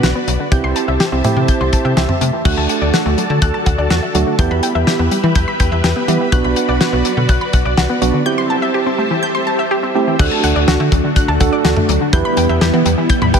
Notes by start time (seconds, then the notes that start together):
Already playing: F#4 B4 D5 B5
0.03 B1 F#4, snare, closed hi-hat
0.15 B3
0.28 B1 F#3, closed hi-hat
0.40 D3
0.52 C2 C4 E4 G4 C5 E5 A5 G6, kick, closed hi-hat
0.64 C2 C6
0.76 A5, closed hi-hat
0.88 C2 E5
1.00 G4, snare, closed hi-hat
1.12 C2 C4 E4 G4
1.24 A3 C4 E4 G4, closed hi-hat, mid tom
1.36 C3 E3
1.48 G6, kick, closed hi-hat
1.61 C2 C6
1.73 A5, kick, closed hi-hat
1.85 C3 E5
1.97 C2 G4 E5, snare, closed hi-hat
2.09 C4, mid tom
2.21 C3 A3, closed hi-hat
2.33 E3
2.45 D2 A3 D4 F#4 A4 D5 A5 F#6, kick, crash
2.57 D2 A5
2.69 F#5, closed hi-hat
2.82 D2 D5
2.94 F#4, snare, closed hi-hat
3.06 D2 A3
3.18 F#3, closed hi-hat
3.30 D3
3.42 D2 F#6, kick, closed hi-hat
3.54 A5
3.66 D2 F#5, kick, closed hi-hat
3.78 D2 D5
3.90 E2 F#4, snare, closed hi-hat
4.03 A3
4.15 D2 F#3 A3 D4 F#4, closed hi-hat
4.27 D3
4.39 E2 B3 E4 G4 B4 E5 B5 G6, kick, closed hi-hat
4.51 E2 B5
4.63 G5, closed hi-hat
4.75 E2 E5
4.87 G4, snare, closed hi-hat
4.99 E2 B3
5.11 G3, closed hi-hat
5.23 E3
5.35 E2 G6, kick, closed hi-hat
5.48 B5
5.60 E2 G5, kick, closed hi-hat
5.72 E2 E5
5.84 E2 G4, snare, closed hi-hat
5.96 B3
6.08 E3 G3 B3 E4 G4, closed hi-hat
6.20 E3
6.32 B1 B3 D4 F#4 D5 F#6, kick, closed hi-hat
6.44 B1 B5
6.56 F#5, closed hi-hat
6.69 B1 D5
6.81 F#4, snare, closed hi-hat
6.93 B1 B3
7.05 F#3, closed hi-hat
7.17 B2 D3
7.29 B1 F#6, kick, closed hi-hat
7.41 B5
7.53 B1 F#5, kick, closed hi-hat
7.65 B1 D5
7.77 C2 F#4, snare, closed hi-hat
7.90 B3
8.02 B1 F#3 B3 D4 F#4, closed hi-hat
8.14 D3
8.26 C4 E4 G4 C5 E5 A5 G6
8.38 C6
8.50 A5
8.62 E5
8.74 G4
8.86 C4
8.98 A3
9.11 E3
9.23 G6
9.35 C6
9.47 A5
9.59 E5
9.71 G4
9.83 C4
9.95 A3 C4 E4 G4
10.07 E3
10.19 D2 A3 D4 F#4 A4 F#6, kick, crash
10.32 A5
10.43 D2 F#5, closed hi-hat
10.56 D2 D5
10.68 D2 F#4, snare, closed hi-hat
10.80 D3 A3
10.92 D2 F#3, kick, closed hi-hat
11.04 D3
11.16 F#6, kick, closed hi-hat
11.28 D2 A5
11.40 D2 D4 F#4 A4 F#5, kick, closed hi-hat
11.53 D5
11.65 D2 F#4, snare, closed hi-hat
11.77 A3, mid tom
11.89 D2 F#3, closed hi-hat
12.01 D3
12.13 E2 G3 B3 E4 G4 B4 G6, kick, closed hi-hat
12.25 B5
12.37 E2 G5, closed hi-hat
12.49 E2 E5
12.61 E2 G4, snare, closed hi-hat
12.73 E3 B3
12.86 E2 G3, closed hi-hat
12.98 E3
13.09 G6, kick, closed hi-hat
13.22 E2 B5, mid tom
13.34 E4 G4 B4 G5, kick, closed hi-hat